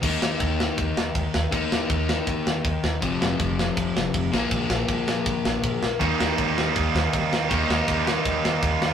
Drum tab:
CC |x-x-x-x-|x-x-x-x-|x-x-x-x-|x-x-x-x-|
SD |-o-o-o-o|-o-o-o-o|-o-o-o-o|-o-o-o-o|
BD |o-o-o-o-|o-o-o-o-|o-o-o-o-|o-o-o-o-|

CC |x-x-x-x-|x-x-x-x-|
SD |-o-o-o-o|-o-o-o-o|
BD |o-o-o-o-|o-o-o-o-|